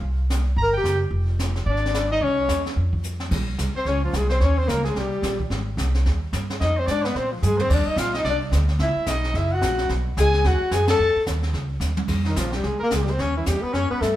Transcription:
0.01 upright bass C2, brush sweep
0.30 snare, hi-hat pedal
0.56 upright bass G1, trumpet A#5, brush sweep
0.63 tenor saxophone A#4
0.73 trumpet G5
0.77 tenor saxophone G4
0.84 upright bass F#1, snare, hi-hat pedal
1.11 upright bass F1, brush sweep
1.39 snare, hi-hat pedal
1.56 snare
1.66 upright bass G#1, tenor saxophone D4, trumpet D5, brush sweep
1.76 snare
1.86 snare
1.94 snare, hi-hat pedal
2.12 tenor saxophone D#4, trumpet D#5
2.21 upright bass C2, tenor saxophone C#4, trumpet C#5, brush sweep
2.48 upright bass E2, snare, hi-hat pedal
2.66 snare
2.76 upright bass F2, brush sweep
2.93 kick
3.03 hi-hat pedal
3.20 snare
3.31 upright bass A#1, brush sweep, kick, snare, crash
3.58 upright bass C2, snare, hi-hat pedal
3.74 tenor saxophone C4, trumpet C5, muted upright bass stroke
3.85 upright bass C#2, tenor saxophone C#4, trumpet C#5, brush sweep, snare
4.04 tenor saxophone F3, trumpet F4
4.13 upright bass C2, tenor saxophone G#3, trumpet G#4, snare, hi-hat pedal
4.29 tenor saxophone C4, trumpet C5, snare
4.40 upright bass D#2, trumpet C#5, brush sweep, snare
4.45 tenor saxophone C#4
4.58 tenor saxophone C4, trumpet C5
4.68 upright bass C#2, tenor saxophone A#3, trumpet A#4, snare, hi-hat pedal
4.84 tenor saxophone G#3, trumpet G#4, snare
4.95 upright bass C2, tenor saxophone G3, trumpet G4, brush sweep, snare
5.22 upright bass A#1, snare, hi-hat pedal
5.40 kick
5.50 upright bass G#1, brush sweep, snare
5.77 upright bass C2, snare, hi-hat pedal
5.94 snare
6.06 upright bass D#2, brush sweep, snare
6.33 upright bass G2, snare, hi-hat pedal
6.50 snare
6.60 upright bass F2, tenor saxophone D#4, trumpet D#5, brush sweep, snare
6.77 tenor saxophone C4, trumpet C5
6.87 upright bass G#2, trumpet D5, snare, hi-hat pedal
6.92 tenor saxophone D4
7.04 tenor saxophone B3, trumpet B4, snare
7.15 upright bass A#2, tenor saxophone C4, trumpet C5, brush sweep, snare
7.31 tenor saxophone F3, trumpet F4
7.42 upright bass G2, tenor saxophone G#3, trumpet G#4, floor tom, hi-hat pedal
7.58 tenor saxophone C4, trumpet C5, floor tom
7.70 upright bass D#2, trumpet D5, brush sweep, kick, snare, crash
7.74 tenor saxophone D4
7.86 trumpet D#5, muted upright bass stroke
7.90 tenor saxophone D#4
7.96 upright bass A#1, tenor saxophone F4, trumpet F5, snare, hi-hat pedal
8.14 tenor saxophone D#4, trumpet D#5, snare
8.24 upright bass C2, trumpet D5, brush sweep, snare
8.30 tenor saxophone D4
8.51 upright bass D2, snare, hi-hat pedal
8.68 snare
8.79 upright bass C#2, tenor saxophone E4, trumpet E5, brush sweep, snare
8.96 muted upright bass stroke
9.06 upright bass B1, trumpet D#5, snare, hi-hat pedal
9.11 tenor saxophone D#4
9.24 snare
9.34 upright bass F#1, tenor saxophone E4, trumpet E5, brush sweep, snare
9.52 tenor saxophone F#4, trumpet F#5
9.61 upright bass A#1, snare, hi-hat pedal
9.78 snare
9.89 upright bass B1, brush sweep, snare
10.17 upright bass C#2, tenor saxophone G#4, trumpet G#5, snare, hi-hat pedal
10.33 snare
10.44 upright bass D#2, tenor saxophone F#4, trumpet F#5, brush sweep, snare
10.61 muted upright bass stroke
10.71 upright bass F#2, tenor saxophone G#4, trumpet G#5, snare, hi-hat pedal
10.88 tenor saxophone A4, trumpet A5, snare, ride
10.98 upright bass F2, brush sweep
11.16 muted upright bass stroke
11.27 upright bass D#2, snare, hi-hat pedal
11.43 snare
11.53 upright bass C#2, brush sweep, snare
11.80 upright bass D#2, snare, hi-hat pedal
11.97 high tom
12.08 upright bass F2, brush sweep, kick, snare, crash
12.25 tenor saxophone D#3, trumpet D#4, snare
12.36 upright bass A#1, tenor saxophone F3, trumpet F4, snare, hi-hat pedal
12.52 tenor saxophone G3, trumpet G4, snare
12.63 upright bass C2, tenor saxophone G#3, trumpet G#4, brush sweep, snare
12.79 tenor saxophone A#3, trumpet A#4, muted upright bass stroke
12.91 upright bass C#2, tenor saxophone G#3, trumpet G#4, snare, hi-hat pedal
13.01 tenor saxophone G3, trumpet G4
13.07 trumpet C5, snare
13.12 tenor saxophone C4
13.19 upright bass D#2, tenor saxophone C#4, trumpet C#5, brush sweep, snare
13.37 tenor saxophone E3, trumpet E4
13.46 upright bass E2, tenor saxophone G3, trumpet G4, snare, hi-hat pedal
13.62 tenor saxophone B3, trumpet B4, muted upright bass stroke
13.73 upright bass F#2, tenor saxophone C#4, trumpet C#5, brush sweep, snare
13.90 tenor saxophone B3, trumpet B4, muted upright bass stroke
14.01 upright bass G2, tenor saxophone A3, trumpet A4, snare, hi-hat pedal

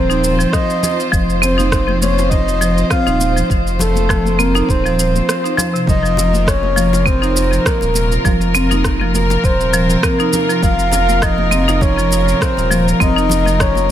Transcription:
Already playing: sub bass D#1, string section F3 C4 F4 C5, soft synth lead C5, synth texture C5
0.10 marimba D#4, shaker
0.24 shaker
0.39 marimba F3, shaker
0.53 soft synth lead D#5, kick, cross-stick, shaker
0.70 shaker
0.83 low conga, shaker
1.00 shaker
1.12 sub bass F1, marimba F3, kick, shaker
1.30 shaker
1.42 marimba C4, soft synth lead C5, high bongo, low conga, shaker
1.58 marimba D#4, high conga, shaker
1.72 kick, cross-stick, shaker
1.88 marimba F3, high conga
2.02 soft synth lead C#5, high conga, shaker
2.18 high bongo, shaker
2.30 soft synth lead D#5, kick, low conga, shaker
2.48 shaker
2.61 marimba F3, high bongo, shaker
2.78 shaker
2.90 marimba C4, soft synth lead F5, kick, cross-stick, shaker
3.07 sub bass D#1, marimba D#4, high bongo, shaker
3.20 high conga, shaker
3.36 marimba F3, shaker
3.50 sub bass F1, kick, shaker
3.67 shaker
3.79 soft synth lead A4, cross-stick, high bongo, low conga, shaker
3.95 high conga, shaker
4.09 marimba F3, kick, cross-stick, shaker
4.26 high conga, shaker
4.39 marimba C4, soft synth lead A#4, high conga, shaker
4.55 marimba D#4, high bongo, shaker
4.69 sub bass D#1, soft synth lead C5, kick, shaker
4.85 marimba F3, shaker
4.99 shaker
5.15 high conga, shaker
5.29 cross-stick, shaker
5.44 marimba D#4, shaker
5.57 marimba F3, low conga, shaker
5.74 marimba C3, shaker
5.87 sub bass F1, string section C3 F3 F4 A#4, synth texture A#4, soft synth lead D#5, kick, low conga, shaker
6.03 marimba F3, shaker
6.17 high bongo, low conga, shaker
6.33 high conga, shaker
6.47 soft synth lead C#5, kick, cross-stick, shaker
6.63 high conga
6.76 marimba F3, high conga, shaker
6.93 high bongo, shaker
7.06 marimba C4, soft synth lead C5, kick, low conga, shaker
7.22 marimba D#4, shaker
7.36 high bongo, shaker
7.52 marimba F3, shaker
7.66 soft synth lead A#4, kick, cross-stick, shaker
7.81 sub bass D#1, high bongo, shaker
7.94 high conga, shaker
8.12 shaker
8.25 sub bass F1, marimba F3, kick, low conga, shaker
8.41 shaker
8.54 marimba C4, high bongo, low conga, shaker
8.71 marimba D#4, high conga, shaker
8.84 kick, cross-stick, shaker
9.01 marimba F3, high conga
9.14 soft synth lead A#4, high conga, shaker
9.30 high bongo, shaker
9.44 sub bass D#1, soft synth lead C5, kick, shaker
9.61 shaker
9.73 marimba F3, shaker
9.90 shaker
10.03 marimba C4, soft synth lead A#4, kick, cross-stick, shaker
10.20 marimba D#4, shaker
10.33 low conga, shaker
10.49 marimba F3, shaker
10.62 sub bass F1, soft synth lead F5, kick, low conga, shaker
10.79 shaker
10.92 high bongo, low conga, shaker
11.08 high conga, shaker
11.22 marimba F3, soft synth lead D#5, kick, cross-stick, shaker
11.38 high conga
11.51 marimba C4, high conga, shaker
11.68 marimba D#4, high bongo, shaker
11.81 soft synth lead C#5, kick, low conga, shaker
11.98 marimba F3, shaker
12.11 high bongo, shaker
12.28 shaker
12.41 soft synth lead C5, kick, cross-stick, shaker
12.57 sub bass D#1, high bongo, shaker
12.70 marimba F3, high conga, shaker
12.88 shaker
13.00 sub bass F1, marimba C4, soft synth lead D#5, kick, low conga, shaker
13.16 marimba D#4, shaker
13.29 high bongo, low conga, shaker
13.45 marimba F3, high conga, shaker
13.60 soft synth lead C#5, kick, cross-stick, shaker
13.75 high conga, shaker

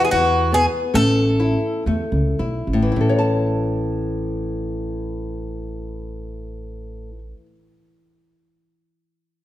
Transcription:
Already playing: nylon-string guitar E3 B3
0.05 bouzouki G#4
0.11 upright bass E2, nylon-string guitar E3, bouzouki F#4
0.52 nylon-string guitar B3, bouzouki G#4
0.94 upright bass A1, nylon-string guitar A3, bouzouki A4
1.40 nylon-string guitar E4
1.86 upright bass E2, nylon-string guitar A3
2.12 upright bass C#2
2.39 upright bass B1, nylon-string guitar E4
2.67 upright bass A1
2.73 nylon-string guitar A2
2.82 nylon-string guitar E3
2.92 nylon-string guitar E4
2.96 upright bass A1
3.01 nylon-string guitar A4
3.09 nylon-string guitar C#5
3.19 nylon-string guitar A5

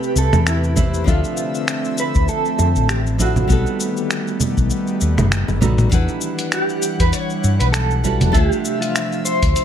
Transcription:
Already playing: analog synth pad C3 A3 G4 B4, nylon-string guitar A3 C4 E4 G4 B4, clean electric guitar G4
0.03 shaker
0.16 fretless electric bass C2, clean electric guitar A4, shaker
0.33 fretless electric bass E2, finger snap, high bongo, low conga, shaker
0.47 clean electric guitar E4, finger snap, shaker
0.64 shaker
0.75 nylon-string guitar A3 C4 E4 G4 B4, kick, low conga, shaker
0.94 shaker
1.04 fretless electric bass D2, analog synth pad D3 A3 C4, nylon-string guitar F3 C4 D4 E5, clean electric guitar F4, kick, shaker
1.08 nylon-string guitar A4, analog synth pad E5
1.24 shaker
1.37 shaker
1.55 shaker
1.68 finger snap, shaker
1.85 shaker
1.98 clean electric guitar B4, shaker
2.15 fretless electric bass D2, kick, shaker
2.28 clean electric guitar A4, shaker
2.45 shaker
2.59 fretless electric bass F2, high bongo, shaker
2.76 fretless electric bass A1, shaker
2.89 clean electric guitar G4, finger snap, shaker
3.07 shaker
3.18 nylon-string guitar F3 C4 D4 E4 A4, clean electric guitar F#4, kick, shaker
3.36 low conga, shaker
3.48 fretless electric bass B1, analog synth pad D#3 G3 A3 B3, nylon-string guitar G3 B3 D#4 F#4, kick, shaker
3.52 nylon-string guitar A4
3.66 shaker
3.80 shaker
3.97 shaker
4.11 finger snap, shaker
4.27 shaker
4.40 low conga, shaker
4.57 fretless electric bass B1, kick, shaker
4.70 shaker
4.87 shaker
5.01 fretless electric bass D#2, shaker
5.17 fretless electric bass F#1, finger snap, high bongo, low conga, shaker
5.32 finger snap, shaker
5.48 fretless electric bass F#1, high bongo, shaker
5.61 fretless electric bass A1, nylon-string guitar G3 B3 D#4 F#4 A4, high tom, low conga, shaker
5.78 mid tom, shaker
5.89 fretless electric bass E2, nylon-string guitar G3 D4 E4 F#5, kick, closed hi-hat, shaker
5.94 analog synth pad E3 G3 F#5, nylon-string guitar B4
6.08 shaker
6.21 shaker
6.39 closed hi-hat, shaker
6.52 clean electric guitar G4, finger snap, closed hi-hat, shaker
6.69 shaker
6.82 shaker
7.00 fretless electric bass E2, clean electric guitar B4, kick, closed hi-hat, shaker
7.13 clean electric guitar C#5, closed hi-hat, shaker
7.30 shaker
7.44 fretless electric bass G2, shaker
7.60 fretless electric bass B1, clean electric guitar B4, closed hi-hat, shaker
7.72 clean electric guitar A4, finger snap, closed hi-hat, shaker
7.91 shaker
8.04 nylon-string guitar G3 D4 E4 F#4 B4, kick, shaker
8.21 fretless electric bass E1, closed hi-hat, low conga, shaker
8.32 fretless electric bass D2, analog synth pad C3 F3 E5, nylon-string guitar A3 D4 F4 E5, clean electric guitar G#4, kick, closed hi-hat, shaker
8.36 nylon-string guitar C5
8.50 clean electric guitar G4, shaker
8.65 shaker
8.81 clean electric guitar F4, closed hi-hat, shaker
8.96 finger snap, closed hi-hat, shaker
9.12 shaker
9.25 clean electric guitar C5, shaker
9.42 fretless electric bass D2, kick, closed hi-hat, shaker
9.56 closed hi-hat, shaker

